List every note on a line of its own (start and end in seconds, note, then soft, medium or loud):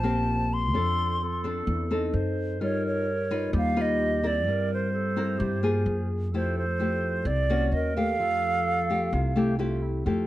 0.00 0.74 A#1 loud
0.00 0.71 A#2 soft
0.00 0.70 A#3 medium
0.00 0.70 C4 medium
0.00 0.47 C5 medium
0.00 0.55 A5 medium
0.04 0.70 G4 medium
0.53 1.45 C6 loud
0.73 1.63 F2 medium
0.73 1.65 F3 soft
0.73 1.20 C4 soft
0.73 1.21 D4 soft
0.73 1.17 A4 medium
0.73 1.21 A4 soft
1.21 2.15 A4 medium
1.44 1.87 C4 medium
1.44 1.87 D4 medium
1.44 1.87 A4 medium
1.67 2.10 E2 loud
1.91 2.58 C4 medium
1.91 2.59 D#4 medium
1.91 2.59 A4 medium
2.14 2.59 F#2 medium
2.14 2.62 C5 medium
2.59 3.49 G2 medium
2.59 3.52 G3 soft
2.59 3.07 D#4 soft
2.59 3.07 F4 soft
2.59 3.56 A#4 loud
2.59 2.83 C#5 medium
2.87 3.51 C#5 medium
3.31 3.73 D#4 medium
3.31 3.73 F4 medium
3.31 3.74 B4 medium
3.53 4.46 D#2 loud
3.53 4.44 G3 medium
3.53 4.46 G4 medium
3.58 3.83 F5 medium
3.76 4.19 D#4 medium
3.76 4.20 F4 medium
3.76 4.20 B4 medium
3.81 4.28 D#5 loud
4.23 5.13 C4 medium
4.23 5.13 E4 medium
4.23 5.13 A#4 medium
4.23 4.72 D5 medium
4.46 5.35 G2 medium
4.46 5.38 G3 soft
4.46 4.90 A#4 medium
4.74 6.08 C5 medium
4.93 5.40 A4 medium
5.16 5.59 C4 medium
5.16 5.59 E4 medium
5.16 5.60 A#4 medium
5.38 5.83 G2 loud
5.38 5.84 G3 soft
5.38 5.87 G4 medium
5.63 6.29 A#3 medium
5.63 6.29 F4 medium
5.63 6.30 G#4 medium
5.86 6.32 F#2 medium
5.86 6.34 G#4 medium
6.32 7.22 F2 medium
6.32 7.24 F3 soft
6.32 6.64 A3 soft
6.32 6.64 E4 soft
6.32 6.64 G4 medium
6.32 7.45 A4 medium
6.32 6.56 C5 medium
6.58 7.28 C5 medium
6.79 7.26 A3 soft
6.79 7.26 E4 soft
6.79 7.26 G4 medium
7.25 7.69 C2 loud
7.25 7.71 C3 medium
7.25 7.74 D5 medium
7.50 7.92 A#3 medium
7.50 7.93 C#4 medium
7.50 7.93 F#4 medium
7.72 8.19 D#2 medium
7.72 8.16 A#4 medium
7.72 7.96 D#5 medium
7.96 8.86 A3 medium
7.96 8.86 G4 medium
7.96 9.55 F5 loud
8.19 9.08 F2 medium
8.19 9.10 F3 soft
8.19 9.15 A4 loud
8.90 9.32 A3 medium
8.90 9.33 G4 medium
9.13 10.02 C2 loud
9.13 10.03 C3 medium
9.13 9.36 F4 medium
9.36 9.55 A3 medium
9.36 9.55 E4 medium
9.36 9.58 G4 medium
9.36 9.56 G4 medium
9.58 10.04 A3 medium
9.58 10.04 E4 medium
9.58 9.84 F4 medium
9.58 10.04 G4 medium
9.82 10.06 E4 medium
10.06 10.27 F2 medium
10.06 10.27 F3 soft
10.06 10.27 A3 soft
10.06 10.27 E4 soft
10.06 10.27 G4 medium